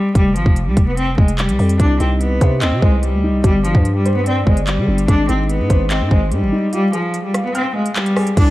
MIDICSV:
0, 0, Header, 1, 5, 480
1, 0, Start_track
1, 0, Tempo, 410959
1, 178, Time_signature, 4, 2, 24, 8
1, 9932, End_track
2, 0, Start_track
2, 0, Title_t, "Grand piano"
2, 0, Program_c, 0, 0
2, 0, Control_c, 0, 64, 127
2, 195, Control_c, 0, 64, 0
2, 2097, Note_on_c, 0, 48, 86
2, 2339, Control_c, 0, 64, 127
2, 2340, Note_on_c, 0, 63, 67
2, 2818, Note_on_c, 0, 72, 90
2, 3055, Note_on_c, 0, 75, 85
2, 3278, Note_off_c, 0, 72, 0
2, 3296, Note_on_c, 0, 72, 84
2, 3297, Note_off_c, 0, 48, 0
2, 3539, Note_off_c, 0, 63, 0
2, 3779, Note_on_c, 0, 63, 81
2, 4016, Note_off_c, 0, 75, 0
2, 4017, Note_off_c, 0, 72, 0
2, 4017, Note_on_c, 0, 55, 88
2, 4018, Note_off_c, 0, 63, 0
2, 4035, Control_c, 0, 64, 0
2, 4235, Control_c, 0, 64, 127
2, 4254, Note_on_c, 0, 62, 71
2, 4738, Note_on_c, 0, 72, 101
2, 4982, Note_on_c, 0, 74, 85
2, 5201, Note_off_c, 0, 72, 0
2, 5217, Note_off_c, 0, 55, 0
2, 5219, Note_on_c, 0, 72, 79
2, 5455, Note_off_c, 0, 62, 0
2, 5697, Note_on_c, 0, 62, 76
2, 5934, Note_on_c, 0, 56, 96
2, 5937, Note_off_c, 0, 62, 0
2, 5938, Note_off_c, 0, 72, 0
2, 5940, Note_off_c, 0, 74, 0
2, 5950, Control_c, 0, 64, 0
2, 6163, Control_c, 0, 64, 127
2, 6178, Note_on_c, 0, 63, 73
2, 6659, Note_on_c, 0, 72, 99
2, 6898, Note_on_c, 0, 75, 78
2, 7117, Note_off_c, 0, 72, 0
2, 7134, Note_on_c, 0, 72, 86
2, 7136, Note_off_c, 0, 56, 0
2, 7378, Note_off_c, 0, 63, 0
2, 7618, Note_on_c, 0, 63, 76
2, 7856, Note_off_c, 0, 72, 0
2, 7856, Note_on_c, 0, 65, 82
2, 7858, Note_off_c, 0, 63, 0
2, 7858, Note_off_c, 0, 75, 0
2, 7872, Control_c, 0, 64, 0
2, 8079, Control_c, 0, 64, 127
2, 8095, Note_on_c, 0, 68, 73
2, 8577, Note_on_c, 0, 77, 90
2, 8818, Note_on_c, 0, 89, 87
2, 9039, Note_off_c, 0, 77, 0
2, 9056, Note_on_c, 0, 77, 81
2, 9057, Note_off_c, 0, 65, 0
2, 9296, Note_off_c, 0, 68, 0
2, 9535, Note_on_c, 0, 68, 79
2, 9776, Note_off_c, 0, 68, 0
2, 9777, Note_off_c, 0, 77, 0
2, 9778, Note_off_c, 0, 89, 0
2, 9791, Control_c, 0, 64, 0
2, 9932, End_track
3, 0, Start_track
3, 0, Title_t, "Cello"
3, 0, Program_c, 1, 42
3, 0, Note_on_c, 1, 55, 89
3, 149, Note_off_c, 1, 55, 0
3, 177, Note_on_c, 1, 55, 113
3, 358, Note_off_c, 1, 55, 0
3, 417, Note_on_c, 1, 53, 82
3, 756, Note_off_c, 1, 53, 0
3, 777, Note_on_c, 1, 55, 79
3, 958, Note_off_c, 1, 55, 0
3, 1017, Note_on_c, 1, 59, 82
3, 1107, Note_off_c, 1, 59, 0
3, 1137, Note_on_c, 1, 60, 90
3, 1318, Note_off_c, 1, 60, 0
3, 1377, Note_on_c, 1, 56, 76
3, 1558, Note_off_c, 1, 56, 0
3, 1618, Note_on_c, 1, 55, 84
3, 2069, Note_off_c, 1, 55, 0
3, 2097, Note_on_c, 1, 62, 105
3, 2278, Note_off_c, 1, 62, 0
3, 2338, Note_on_c, 1, 60, 77
3, 2519, Note_off_c, 1, 60, 0
3, 2577, Note_on_c, 1, 59, 80
3, 3028, Note_off_c, 1, 59, 0
3, 3058, Note_on_c, 1, 60, 85
3, 3239, Note_off_c, 1, 60, 0
3, 3297, Note_on_c, 1, 56, 80
3, 3478, Note_off_c, 1, 56, 0
3, 3538, Note_on_c, 1, 55, 81
3, 3989, Note_off_c, 1, 55, 0
3, 4018, Note_on_c, 1, 55, 111
3, 4198, Note_off_c, 1, 55, 0
3, 4257, Note_on_c, 1, 53, 81
3, 4596, Note_off_c, 1, 53, 0
3, 4618, Note_on_c, 1, 55, 88
3, 4798, Note_off_c, 1, 55, 0
3, 4858, Note_on_c, 1, 59, 78
3, 4948, Note_off_c, 1, 59, 0
3, 4977, Note_on_c, 1, 60, 91
3, 5158, Note_off_c, 1, 60, 0
3, 5217, Note_on_c, 1, 56, 80
3, 5398, Note_off_c, 1, 56, 0
3, 5457, Note_on_c, 1, 55, 84
3, 5908, Note_off_c, 1, 55, 0
3, 5937, Note_on_c, 1, 62, 118
3, 6118, Note_off_c, 1, 62, 0
3, 6178, Note_on_c, 1, 60, 82
3, 6359, Note_off_c, 1, 60, 0
3, 6418, Note_on_c, 1, 59, 84
3, 6869, Note_off_c, 1, 59, 0
3, 6898, Note_on_c, 1, 60, 84
3, 7079, Note_off_c, 1, 60, 0
3, 7138, Note_on_c, 1, 56, 80
3, 7319, Note_off_c, 1, 56, 0
3, 7378, Note_on_c, 1, 55, 84
3, 7829, Note_off_c, 1, 55, 0
3, 7858, Note_on_c, 1, 55, 110
3, 8039, Note_off_c, 1, 55, 0
3, 8098, Note_on_c, 1, 53, 82
3, 8436, Note_off_c, 1, 53, 0
3, 8458, Note_on_c, 1, 55, 81
3, 8639, Note_off_c, 1, 55, 0
3, 8697, Note_on_c, 1, 59, 83
3, 8788, Note_off_c, 1, 59, 0
3, 8817, Note_on_c, 1, 60, 90
3, 8998, Note_off_c, 1, 60, 0
3, 9057, Note_on_c, 1, 56, 78
3, 9238, Note_off_c, 1, 56, 0
3, 9298, Note_on_c, 1, 55, 84
3, 9749, Note_off_c, 1, 55, 0
3, 9778, Note_on_c, 1, 62, 109
3, 9932, Note_off_c, 1, 62, 0
3, 9932, End_track
4, 0, Start_track
4, 0, Title_t, "808-style bass"
4, 0, Program_c, 2, 38
4, 178, Note_on_c, 2, 29, 103
4, 417, Note_on_c, 2, 32, 101
4, 434, Note_off_c, 2, 29, 0
4, 531, Note_off_c, 2, 32, 0
4, 536, Note_on_c, 2, 29, 104
4, 777, Note_on_c, 2, 36, 104
4, 795, Note_off_c, 2, 29, 0
4, 891, Note_off_c, 2, 36, 0
4, 899, Note_on_c, 2, 29, 102
4, 1359, Note_off_c, 2, 29, 0
4, 1378, Note_on_c, 2, 29, 110
4, 1737, Note_on_c, 2, 36, 97
4, 1755, Note_off_c, 2, 29, 0
4, 1851, Note_off_c, 2, 36, 0
4, 1857, Note_on_c, 2, 41, 104
4, 2088, Note_off_c, 2, 41, 0
4, 2097, Note_on_c, 2, 36, 115
4, 2328, Note_off_c, 2, 36, 0
4, 2337, Note_on_c, 2, 36, 105
4, 2798, Note_off_c, 2, 36, 0
4, 2819, Note_on_c, 2, 48, 100
4, 3058, Note_on_c, 2, 38, 94
4, 3075, Note_off_c, 2, 48, 0
4, 3177, Note_on_c, 2, 48, 98
4, 3195, Note_off_c, 2, 38, 0
4, 3291, Note_off_c, 2, 48, 0
4, 3298, Note_on_c, 2, 36, 104
4, 3657, Note_on_c, 2, 38, 102
4, 3675, Note_off_c, 2, 36, 0
4, 3837, Note_on_c, 2, 36, 99
4, 3855, Note_off_c, 2, 38, 0
4, 4008, Note_off_c, 2, 36, 0
4, 4017, Note_on_c, 2, 31, 112
4, 4363, Note_off_c, 2, 31, 0
4, 4376, Note_on_c, 2, 43, 100
4, 5183, Note_off_c, 2, 43, 0
4, 5219, Note_on_c, 2, 31, 107
4, 5578, Note_on_c, 2, 50, 99
4, 5595, Note_off_c, 2, 31, 0
4, 5692, Note_off_c, 2, 50, 0
4, 5698, Note_on_c, 2, 31, 104
4, 5928, Note_off_c, 2, 31, 0
4, 5937, Note_on_c, 2, 32, 111
4, 6168, Note_off_c, 2, 32, 0
4, 6178, Note_on_c, 2, 32, 109
4, 6538, Note_on_c, 2, 44, 101
4, 6555, Note_off_c, 2, 32, 0
4, 6652, Note_off_c, 2, 44, 0
4, 6658, Note_on_c, 2, 32, 105
4, 7018, Note_on_c, 2, 44, 98
4, 7035, Note_off_c, 2, 32, 0
4, 7131, Note_off_c, 2, 44, 0
4, 7138, Note_on_c, 2, 32, 105
4, 7378, Note_on_c, 2, 44, 97
4, 7395, Note_off_c, 2, 32, 0
4, 7498, Note_on_c, 2, 32, 99
4, 7515, Note_off_c, 2, 44, 0
4, 7612, Note_off_c, 2, 32, 0
4, 9777, Note_on_c, 2, 36, 114
4, 9932, Note_off_c, 2, 36, 0
4, 9932, End_track
5, 0, Start_track
5, 0, Title_t, "Drums"
5, 177, Note_on_c, 9, 36, 114
5, 177, Note_on_c, 9, 42, 95
5, 294, Note_off_c, 9, 36, 0
5, 294, Note_off_c, 9, 42, 0
5, 417, Note_on_c, 9, 42, 75
5, 534, Note_off_c, 9, 42, 0
5, 536, Note_on_c, 9, 36, 98
5, 653, Note_off_c, 9, 36, 0
5, 657, Note_on_c, 9, 42, 68
5, 774, Note_off_c, 9, 42, 0
5, 897, Note_on_c, 9, 42, 79
5, 898, Note_on_c, 9, 36, 99
5, 1014, Note_off_c, 9, 42, 0
5, 1015, Note_off_c, 9, 36, 0
5, 1137, Note_on_c, 9, 42, 82
5, 1254, Note_off_c, 9, 42, 0
5, 1378, Note_on_c, 9, 36, 97
5, 1495, Note_off_c, 9, 36, 0
5, 1498, Note_on_c, 9, 42, 76
5, 1615, Note_off_c, 9, 42, 0
5, 1617, Note_on_c, 9, 39, 111
5, 1617, Note_on_c, 9, 42, 59
5, 1733, Note_off_c, 9, 39, 0
5, 1734, Note_off_c, 9, 42, 0
5, 1737, Note_on_c, 9, 42, 60
5, 1854, Note_off_c, 9, 42, 0
5, 1857, Note_on_c, 9, 46, 53
5, 1974, Note_off_c, 9, 46, 0
5, 1978, Note_on_c, 9, 42, 75
5, 2094, Note_off_c, 9, 42, 0
5, 2098, Note_on_c, 9, 36, 112
5, 2098, Note_on_c, 9, 42, 90
5, 2214, Note_off_c, 9, 36, 0
5, 2214, Note_off_c, 9, 42, 0
5, 2338, Note_on_c, 9, 42, 76
5, 2454, Note_off_c, 9, 42, 0
5, 2578, Note_on_c, 9, 42, 70
5, 2694, Note_off_c, 9, 42, 0
5, 2818, Note_on_c, 9, 42, 78
5, 2819, Note_on_c, 9, 36, 94
5, 2935, Note_off_c, 9, 36, 0
5, 2935, Note_off_c, 9, 42, 0
5, 3057, Note_on_c, 9, 39, 120
5, 3058, Note_on_c, 9, 42, 81
5, 3174, Note_off_c, 9, 39, 0
5, 3175, Note_off_c, 9, 42, 0
5, 3299, Note_on_c, 9, 36, 101
5, 3415, Note_off_c, 9, 36, 0
5, 3538, Note_on_c, 9, 42, 74
5, 3655, Note_off_c, 9, 42, 0
5, 4018, Note_on_c, 9, 36, 111
5, 4018, Note_on_c, 9, 42, 93
5, 4134, Note_off_c, 9, 36, 0
5, 4134, Note_off_c, 9, 42, 0
5, 4258, Note_on_c, 9, 42, 75
5, 4375, Note_off_c, 9, 42, 0
5, 4376, Note_on_c, 9, 36, 98
5, 4493, Note_off_c, 9, 36, 0
5, 4498, Note_on_c, 9, 42, 71
5, 4615, Note_off_c, 9, 42, 0
5, 4738, Note_on_c, 9, 42, 81
5, 4854, Note_off_c, 9, 42, 0
5, 4978, Note_on_c, 9, 42, 83
5, 5094, Note_off_c, 9, 42, 0
5, 5218, Note_on_c, 9, 36, 98
5, 5335, Note_off_c, 9, 36, 0
5, 5338, Note_on_c, 9, 42, 78
5, 5454, Note_off_c, 9, 42, 0
5, 5457, Note_on_c, 9, 39, 108
5, 5457, Note_on_c, 9, 42, 72
5, 5573, Note_off_c, 9, 39, 0
5, 5574, Note_off_c, 9, 42, 0
5, 5817, Note_on_c, 9, 42, 77
5, 5934, Note_off_c, 9, 42, 0
5, 5937, Note_on_c, 9, 36, 113
5, 5937, Note_on_c, 9, 42, 92
5, 6054, Note_off_c, 9, 36, 0
5, 6054, Note_off_c, 9, 42, 0
5, 6177, Note_on_c, 9, 42, 75
5, 6294, Note_off_c, 9, 42, 0
5, 6417, Note_on_c, 9, 42, 71
5, 6534, Note_off_c, 9, 42, 0
5, 6657, Note_on_c, 9, 42, 78
5, 6658, Note_on_c, 9, 36, 101
5, 6774, Note_off_c, 9, 42, 0
5, 6775, Note_off_c, 9, 36, 0
5, 6897, Note_on_c, 9, 39, 114
5, 6898, Note_on_c, 9, 42, 84
5, 7014, Note_off_c, 9, 39, 0
5, 7014, Note_off_c, 9, 42, 0
5, 7138, Note_on_c, 9, 36, 99
5, 7255, Note_off_c, 9, 36, 0
5, 7377, Note_on_c, 9, 42, 76
5, 7494, Note_off_c, 9, 42, 0
5, 7857, Note_on_c, 9, 42, 91
5, 7974, Note_off_c, 9, 42, 0
5, 8097, Note_on_c, 9, 42, 75
5, 8214, Note_off_c, 9, 42, 0
5, 8337, Note_on_c, 9, 42, 70
5, 8454, Note_off_c, 9, 42, 0
5, 8577, Note_on_c, 9, 42, 81
5, 8578, Note_on_c, 9, 37, 92
5, 8694, Note_off_c, 9, 37, 0
5, 8694, Note_off_c, 9, 42, 0
5, 8817, Note_on_c, 9, 42, 82
5, 8934, Note_off_c, 9, 42, 0
5, 9177, Note_on_c, 9, 42, 76
5, 9294, Note_off_c, 9, 42, 0
5, 9296, Note_on_c, 9, 39, 105
5, 9297, Note_on_c, 9, 42, 59
5, 9413, Note_off_c, 9, 39, 0
5, 9414, Note_off_c, 9, 42, 0
5, 9417, Note_on_c, 9, 42, 60
5, 9534, Note_off_c, 9, 42, 0
5, 9537, Note_on_c, 9, 37, 87
5, 9537, Note_on_c, 9, 46, 53
5, 9654, Note_off_c, 9, 37, 0
5, 9654, Note_off_c, 9, 46, 0
5, 9657, Note_on_c, 9, 42, 76
5, 9774, Note_off_c, 9, 42, 0
5, 9777, Note_on_c, 9, 36, 119
5, 9777, Note_on_c, 9, 42, 93
5, 9777, Note_on_c, 9, 49, 105
5, 9894, Note_off_c, 9, 36, 0
5, 9894, Note_off_c, 9, 42, 0
5, 9894, Note_off_c, 9, 49, 0
5, 9932, End_track
0, 0, End_of_file